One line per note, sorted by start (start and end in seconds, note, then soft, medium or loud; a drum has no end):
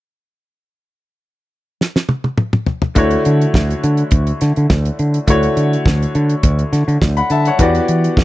1.81 snare medium
1.96 snare medium
2.09 high tom medium
2.24 high tom medium
2.38 mid tom medium
2.53 mid tom medium
2.67 floor tom medium
2.82 floor tom loud
2.95 3.15 D2 loud
2.95 5.23 D3 medium
2.95 5.23 A3 medium
2.95 5.24 E4 medium
2.95 5.24 F#4 medium
2.95 5.25 C#5 medium
2.95 kick loud
2.95 closed hi-hat medium
3.11 closed hi-hat soft
3.25 3.44 D3 medium
3.25 closed hi-hat medium
3.41 closed hi-hat soft
3.54 3.73 D2 loud
3.54 kick loud
3.54 snare loud
3.71 closed hi-hat soft
3.84 4.02 D3 medium
3.84 closed hi-hat medium
3.97 closed hi-hat soft
4.11 4.31 D2 loud
4.11 kick loud
4.11 closed hi-hat medium
4.27 closed hi-hat medium
4.41 4.51 D3 loud
4.41 snare soft
4.41 closed hi-hat medium
4.56 4.66 D3 medium
4.56 closed hi-hat soft
4.70 4.89 D2 loud
4.70 kick loud
4.70 snare loud
4.85 closed hi-hat soft
4.99 5.18 D3 medium
4.99 closed hi-hat medium
5.14 closed hi-hat medium
5.27 5.47 D2 loud
5.27 7.55 D3 medium
5.27 7.55 A3 medium
5.27 7.56 E4 medium
5.27 7.56 F#4 medium
5.27 6.99 C#5 medium
5.27 kick loud
5.27 closed hi-hat medium
5.43 closed hi-hat soft
5.57 5.75 D3 medium
5.57 closed hi-hat medium
5.73 closed hi-hat soft
5.86 6.04 D2 loud
5.86 kick loud
5.86 snare loud
6.03 closed hi-hat soft
6.15 6.34 D3 loud
6.15 closed hi-hat medium
6.29 closed hi-hat soft
6.43 6.62 D2 loud
6.43 kick loud
6.43 closed hi-hat medium
6.59 closed hi-hat soft
6.73 6.82 D3 loud
6.73 snare soft
6.73 closed hi-hat medium
6.88 6.97 D3 medium
6.88 closed hi-hat soft
7.02 7.20 D2 loud
7.02 kick loud
7.02 snare loud
7.17 7.30 F#5 medium
7.17 7.30 B5 medium
7.17 closed hi-hat soft
7.30 7.49 D3 medium
7.30 7.46 E5 medium
7.30 7.45 A5 medium
7.30 closed hi-hat medium
7.45 7.74 C#5 medium
7.45 7.74 F#5 medium
7.45 closed hi-hat medium
7.59 7.78 E2 loud
7.59 8.24 E3 medium
7.59 8.24 B3 medium
7.59 8.24 F#4 medium
7.59 8.24 G4 medium
7.59 8.24 D5 medium
7.59 kick loud
7.59 closed hi-hat medium
7.75 closed hi-hat soft
7.88 8.07 E3 medium
7.88 closed hi-hat medium
8.04 closed hi-hat medium
8.17 8.24 E2 loud
8.17 kick loud
8.17 snare loud